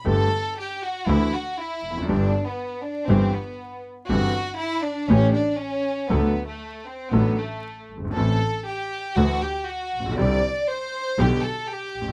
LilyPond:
<<
  \new Staff \with { instrumentName = "Violin section" } { \time 4/4 \key g \major \tempo 4 = 119 a'4 g'8 fis'8 e'8 fis'8 e'4 | d'8. b8. d'8 c'8 b4 r8 | fis'4 e'8 d'8 cis'8 d'8 cis'4 | b8. a8. c'8 b8 a4 r8 |
a'4 g'4 fis'8 g'8 fis'4 | d''4 c''4 g'8 a'8 g'4 | }
  \new Staff \with { instrumentName = "Grand piano" } { \clef bass \time 4/4 \key g \major <g,, g, d a b g'>8 r4. <d, d e a d' fis'>8 r4 r32 e,32 f,32 fis,32 | <g,, g, d g b g'>8 r4. <g,, g, e g b g'>8 r4. | <g,, g, e g c' g'>8 r4. <a,, a, e a cis' g'>8 r4. | <d, d fis a d' a'>8 r4. <a,, a, fis a d' a'>8 r4 r32 fis,,32 g,,32 aes,,32 |
<a,, a, e a c' a'>8 r4. <d, d e a d' fis'>8 r4 r32 a,,32 bes,,32 b,,32 | <c, c d g c' g'>8 r4. <b,, b, d g b g'>8 r4 r32 a,,32 bes,,32 r32 | }
  \new Staff \with { instrumentName = "Double bass" } { \clef bass \time 4/4 \key g \major g,,8 r4. d,8 r4 f,,8 | g,,8 r4. g,,8 r4. | g,,8 r4. a,,8 r4. | d,8 r4. a,,8 r4 g,,8 |
a,,8 r4. d,8 r4 bes,,8 | c,8 r4. b,,8 r4 bes,,8 | }
>>